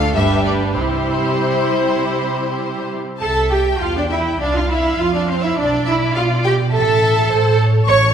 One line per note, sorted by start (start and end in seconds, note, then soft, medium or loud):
0.00 0.11 D2 medium
0.00 0.15 D2 medium
0.00 0.13 A3 soft
0.00 0.13 D4 soft
0.00 0.15 F4 soft
0.00 0.14 A4 soft
0.00 0.14 F5 medium
0.14 0.73 G1 soft
0.14 0.77 G2 soft
0.14 0.75 G3 soft
0.14 0.75 D4 soft
0.14 0.73 G4 soft
0.14 0.76 B4 soft
0.14 0.45 E5 medium
0.45 0.53 D5 medium
0.75 1.34 C2 soft
0.75 3.02 C3 soft
0.75 2.98 G3 soft
0.75 3.02 E4 soft
0.75 2.97 G4 soft
0.75 3.01 C5 soft
0.75 2.88 C5 medium
3.20 3.77 C2 soft
3.20 3.29 A4 medium
3.20 3.50 A4 medium
3.20 3.77 E5 soft
3.20 3.49 A5 medium
3.50 3.58 G4 soft
3.50 3.81 G4 medium
3.50 3.81 G5 soft
3.80 4.41 E2 soft
3.80 3.96 F4 soft
3.80 3.87 F4 medium
3.80 3.96 F5 medium
3.80 4.41 G5 soft
3.95 4.01 D4 soft
3.95 4.11 D4 soft
3.95 4.03 D5 soft
4.10 4.18 E4 soft
4.10 4.40 E4 medium
4.10 4.20 E5 soft
4.39 4.99 C2 soft
4.39 4.55 D4 soft
4.39 4.55 D4 medium
4.39 4.56 D5 medium
4.39 5.58 F5 soft
4.54 4.69 F4 soft
4.54 4.70 F4 medium
4.54 4.71 F5 soft
4.69 4.77 E4 soft
4.69 4.99 E4 medium
4.69 4.99 E5 soft
4.99 5.56 F2 soft
4.99 5.14 F4 medium
4.99 5.15 F5 medium
5.14 5.20 D4 soft
5.14 5.29 D4 soft
5.14 5.28 D5 soft
5.28 5.43 C4 soft
5.28 5.43 C4 medium
5.28 5.43 C5 soft
5.43 5.58 E4 soft
5.43 5.50 E4 medium
5.43 5.58 E5 medium
5.57 6.15 B1 medium
5.57 5.87 D4 medium
5.57 5.86 D4 medium
5.57 5.87 D5 medium
5.57 6.74 D5 medium
5.86 5.94 E4 medium
5.86 6.16 E4 medium
5.86 5.94 E5 medium
6.15 6.72 B2 medium
6.15 6.24 F4 medium
6.15 6.45 F4 medium
6.15 6.23 F5 medium
6.45 6.53 G4 medium
6.45 6.54 G4 medium
6.45 6.53 G5 medium
6.73 7.31 A1 medium
6.73 7.57 A4 medium
6.73 7.58 A4 medium
6.73 7.30 E5 medium
6.73 7.57 A5 medium
7.31 7.86 A2 medium
7.31 7.60 C5 medium
7.60 8.14 C#5 medium
7.86 8.14 A1 medium
7.86 8.14 C#5 medium
7.86 7.96 C#5 medium
7.86 8.14 C#6 medium